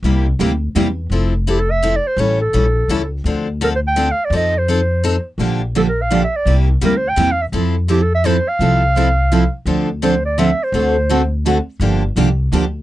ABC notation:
X:1
M:3/4
L:1/16
Q:"Swing" 1/4=168
K:F
V:1 name="Clarinet"
z12 | z4 (3G2 A2 e2- (3e2 d2 c2 | ^c2 A8 z2 | z4 (3B2 c2 g2- (3g2 f2 d2 |
_e2 c8 z2 | z4 (3A2 B2 f2- (3f2 e2 d2 | z4 (3B2 c2 g2- (3g2 f2 e2 | z4 (3G2 A2 e2 c2 f2- |
f8- f2 z2 | z4 c2 d2 e2 c2- | c6 z6 | z12 |]
V:2 name="Steel-string acoustic guitar"
[C,G,B,EG]2 z2 [C,G,B,EG] z3 [C,G,B,EG] z3 | [F,CEA]2 z2 [F,CEA] z3 [F,CEA] z3 | [E,G,^CEA]2 z2 [E,G,CEA] z3 [E,G,CEA] z3 | [D,F,CDA]2 z2 [D,F,CDA] z3 [D,F,CDA] z3 |
[F,C_EA]2 z2 [F,CEA] z3 [F,CEA] z3 | [D,F,B,DG]2 z2 [D,F,B,DG] z3 [D,F,B,DG] z3 | [C,G,B,EG]2 z2 [C,G,B,EG] z3 [C,G,B,EG] z3 | [F,CEA]2 z2 [F,CEA] z3 [F,CEA] z3 |
[F,CEA]2 z2 [F,CEA] z3 [F,CEA] z3 | [D,F,CDA]2 z2 [D,F,CDA] z3 [D,F,CDA] z3 | [D,A,C^FA]2 z2 [D,A,CFA] z3 [D,A,CFA] z3 | [D,F,B,DG]2 z2 [D,F,B,DG] z3 [D,F,B,DG] z3 |]
V:3 name="Steel-string acoustic guitar"
[C,G,B,EG]2 z2 [C,G,B,EG] z3 [C,G,B,EG] z3 | z12 | z12 | z12 |
z12 | [D,F,B,DG]2 z2 [D,F,B,DG] z3 [D,F,B,DG] z3 | [C,G,B,EG]2 z2 [C,G,B,EG] z3 [C,G,B,EG] z3 | [F,CEA]2 z2 [F,CEA] z3 [F,CEA] z3 |
[F,CEA]2 z2 [F,CEA] z3 [F,CEA] z3 | [D,F,CDA]2 z2 [D,F,CDA] z3 [D,F,CDA] z3 | [D,A,C^FA]2 z2 [D,A,CFA] z3 [D,A,CFA] z3 | [D,F,B,DG]2 z2 [D,F,B,DG] z3 [D,F,B,DG] z3 |]
V:4 name="Upright bass" clef=bass
C,,4 D,,4 E,,4 | F,,,12 | A,,,4 B,,,4 ^C,,4 | D,,12 |
F,,12 | B,,,12 | C,,4 D,,4 E,,4 | F,,12 |
C,,12 | D,,12 | D,,12 | G,,,4 C,,4 D,,4 |]